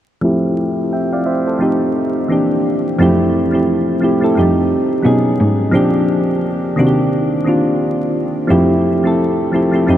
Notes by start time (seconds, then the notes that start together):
0.21 F3 A3 C4 E4 G4
0.93 E5 G5
1.13 D5 F5
1.26 C5 E5
1.47 A4 C5
1.59 F3 A3 C4 D#4 G4
2.28 E3 A#3 C4 D4 G4
2.98 F2 F3 A3 C4 E4 G4
3.51 F3 A3 C4 E4 G4
4.00 F3 A3 C4 E4 G4
4.20 F3 A3 C4 E4 A4
4.35 F2 F3 G3 C4 D#4 G4
4.43 A3
5.02 B2 F#3 B3 C#4 D#4 G#4
5.41 G#2
5.71 A#2 F3 A#3 C4 D4 G4
6.76 C3 D#3 A#3 C4 D4 F#4
6.87 G4
7.44 D#3 A#3 C4 D4
7.49 F4
8.47 F2 F3 A3 C4 E4 G4
9.03 F3 A3 C4 E4 A4
9.52 F3 A3 C4 E4 G4
9.71 F3 A3 C4 E4
9.76 G4
9.87 F2 F3 A3 C4 D#4 G4